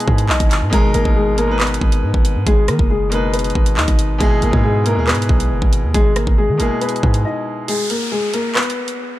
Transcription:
Already playing: B2 G#3 B3 E4 G#4 B4
0.00 closed hi-hat
0.08 G#2, kick
0.18 closed hi-hat
0.29 B1 D#4 D#5, clap
0.40 G#1, kick, closed hi-hat
0.51 clap, closed hi-hat
0.62 G#2
0.70 G#1 B2 G#3 D#4 G#4, kick, closed hi-hat
0.74 A#4
0.94 G#1 A#3 A#4, closed hi-hat
1.03 G#1 B2 G#3 D#4, kick
1.07 A#4
1.16 G#3 G#4
1.35 B2 G#3 A#3 D#4 A#4, closed hi-hat
1.40 A#4
1.47 B2 G#3 D#4
1.51 B4
1.60 B3 B4, clap, closed hi-hat
1.67 closed hi-hat
1.74 closed hi-hat
1.81 G#1, kick
1.92 closed hi-hat
2.03 G#2
2.14 G#1, kick
2.25 closed hi-hat
2.36 G#2
2.47 G#1 G#3 G#4, kick, closed hi-hat
2.68 D#3 A#3 A#4, cross-stick, closed hi-hat
2.79 F#1, kick
2.90 G#3 G#4
3.10 B2 G#3 A#3 D#4 A#4, closed hi-hat
3.14 B4
3.34 B3 B4, closed hi-hat
3.39 closed hi-hat
3.44 closed hi-hat
3.50 closed hi-hat
3.55 G#1, kick
3.66 closed hi-hat
3.77 D#2 D#4 D#5, clap
3.88 G#1, kick, closed hi-hat
3.99 closed hi-hat
4.18 G#1 B2 G#3 E4 G#4, kick, closed hi-hat
4.22 G#4
4.42 G#1 A#3 A#4, closed hi-hat
4.51 G#2 B2 G#3 E4, kick
4.55 G#4
4.64 G#3 G#4
4.84 B2 G#3 A#3 E4 A#4, closed hi-hat
4.88 A#4
4.95 D#2 B2 G#3 E4
4.99 G#4
5.07 B3 B4, clap, closed hi-hat
5.13 G#2, closed hi-hat
5.22 closed hi-hat
5.29 B1, kick
5.40 closed hi-hat
5.51 F#1
5.62 G#1, kick
5.73 closed hi-hat
5.84 D#2
5.94 G#1 G#3 G#4, kick, closed hi-hat
6.16 A#3 A#4, cross-stick, closed hi-hat
6.27 G#1, kick
6.38 G#3 G#4
6.49 D#3
6.57 G#1 B2 G#3 A#3 E4 A#4, closed hi-hat
6.62 G#4
6.81 B3 B4, closed hi-hat
6.89 closed hi-hat
6.96 closed hi-hat
7.03 G#2, kick
7.14 closed hi-hat
7.25 D#4 D#5
7.68 G#3 G#4, closed hi-hat, downlifter
7.90 A#3 A#4, closed hi-hat
8.12 G#3 G#4
8.34 A#3 A#4, closed hi-hat
8.55 B3 B4, clap, closed hi-hat
8.63 closed hi-hat
8.70 closed hi-hat
8.88 closed hi-hat

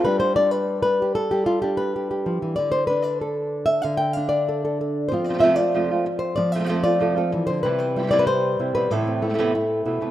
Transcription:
0.05 G3 D4 G4 B4
0.20 C5
0.36 D4 D5
0.51 B4
0.82 B4
1.02 G4
1.15 A4
1.31 G3 G4
1.46 F4
1.62 D4 G4
1.77 B4
1.96 G4
2.11 G4
2.26 F3
2.42 E3
2.56 D3 D5
2.72 C5
2.87 D4 B4
3.02 D5
3.21 A4
3.66 E5
3.82 D3 F5
3.97 G5
4.13 D4 F5
4.29 D5
4.49 A4
4.65 A4
4.81 A4
5.09 F3 C5, muted nylon-string guitar stroke
5.13 C4 F4
5.24 D5
5.29 C3 F3 A3 C4 F4
5.34 C3 F3 A3 C4 F4
5.38 C3 F3 A3 C4 F4 E5
5.43 F2 C3 F3 A3 C4 F4
5.56 F3 A3 C4 F4 D5
5.74 F2 C3 F3 A3 C4 F4
5.91 F3 A3 C4 F4
6.06 muted nylon-string guitar stroke
6.19 C5
6.36 F3 D5, muted nylon-string guitar stroke
6.52 C3 F3 A3 C4 E5
6.56 C3 F3 A3 C4 F4
6.60 C3 F3 A3 F4
6.65 F2 C4 F4 F5
6.69 C3 F3 A3 C4 F4
6.84 F3 A3 C4 F4 D5
6.99 F2 C3 F3 A3 C4 F4 A4
7.16 F3 A3 C4 F4 A4
7.32 E3, muted nylon-string guitar stroke
7.47 D3 C5
7.63 C3 E3 G3 C4 E4 B4
7.79 C5
7.96 E3 G3 C4 E4
8.03 E3 G3 C4 E4
8.07 E3 G3 C4 E4 D5
8.12 C3 E3 G3 C4 E4
8.19 B4
8.27 C5, muted nylon-string guitar stroke
8.59 C3 G3 C4 E4
8.75 B2 E3 G3 C4 E4 B4
8.91 A2 C3 E3 A3 E4 A4
9.07 C4
9.22 E3 A3 B3 E4
9.29 C3 E3 A3 B3 E4
9.34 C3 E3 A3 B3 E4
9.38 A2 C3 E3 A3 B3 C4 E4
9.55 E4, muted nylon-string guitar stroke
9.85 B2 E3 A3 B3 E4
10.01 C3 E3 A3 B3 E4

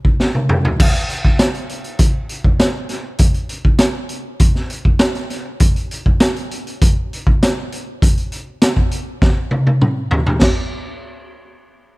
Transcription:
0.05 kick
0.20 snare
0.35 high tom
0.49 mid tom
0.65 floor tom
0.80 kick, crash
0.96 closed hi-hat
1.10 closed hi-hat
1.25 kick
1.39 snare, closed hi-hat
1.55 closed hi-hat
1.69 closed hi-hat
1.84 closed hi-hat
1.99 kick, closed hi-hat
2.29 closed hi-hat
2.44 kick
2.59 snare, closed hi-hat
2.89 snare, closed hi-hat
3.19 kick, closed hi-hat
3.34 closed hi-hat
3.49 closed hi-hat
3.65 kick
3.79 snare, closed hi-hat
4.09 closed hi-hat
4.39 kick, closed hi-hat
4.55 snare
4.70 closed hi-hat
4.85 kick
4.99 snare, closed hi-hat
5.15 snare, closed hi-hat
5.30 snare, closed hi-hat
5.60 kick, closed hi-hat
5.76 closed hi-hat
5.91 closed hi-hat
6.06 kick
6.20 snare, closed hi-hat
6.36 closed hi-hat
6.51 closed hi-hat
6.67 closed hi-hat
6.81 kick, closed hi-hat
7.13 closed hi-hat
7.27 kick
7.43 snare, closed hi-hat
7.72 closed hi-hat
8.02 kick, closed hi-hat
8.17 closed hi-hat
8.32 closed hi-hat
8.61 snare, closed hi-hat
8.77 kick
8.91 closed hi-hat
9.22 kick, snare
9.51 high tom
9.67 high tom
9.81 mid tom
10.11 floor tom
10.26 floor tom
10.41 kick, snare, crash

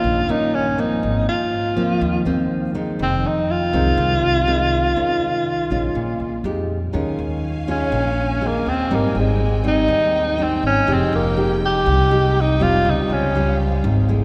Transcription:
Already playing: D#3 A#3 C#4 F4
0.04 A#1 G2
0.28 A#1 D#3 A#3 C#4 D#4
0.55 C#4
0.78 F3 A#3 C4 D#4
1.03 G#1 G#2
1.29 F4
1.77 D#2 F3 A#3 C4
2.01 D#2 D#3
2.25 D#2 F3 A#3 C4
2.75 D#3 G#3 C4
2.99 F1 F2 C4
3.27 D#4
3.51 F4
3.73 C2 D#3 G#3 C4
3.97 C2 C3
4.47 D#3 G#3 C4
4.96 D#2 D#3 G#3 C#4 F4
5.70 A#1 G#3 C#4 F4
5.95 A#1 A#2
6.20 A#1
6.44 F2 G#3 D#4 G4
6.93 D#2 D#3 G#3 C#4 F4 F5 G#5
7.19 D#2
7.67 G#3 C#4 F4
7.92 A#1 A#2
8.41 G#3 C#4 F4
8.47 A#3
8.66 D#2 C4
8.89 G#1 G#2 G3 C4 D#4 G5
8.95 A#3
9.15 G#1 G#3
9.64 G3 C4 D#4
9.68 D#4
9.88 D#2 D#3
10.38 G3 C4 D#4
10.43 C4
10.63 G#1 C#4
10.87 F1 F3 G#3 D#4 G4
10.93 C4
11.13 F1 A#3
11.36 G#3 D#4 G4
11.66 G4
11.86 C2 C3
12.11 G#3 D#4 G4
12.41 D#4
12.60 F1 G3 C4 F4
12.84 C#2 C#3 C5 F5
12.90 D#4
13.09 C#2 C#4
13.35 G3 C4 F4
13.84 G#1 G#2
14.08 A3 E4 G#4

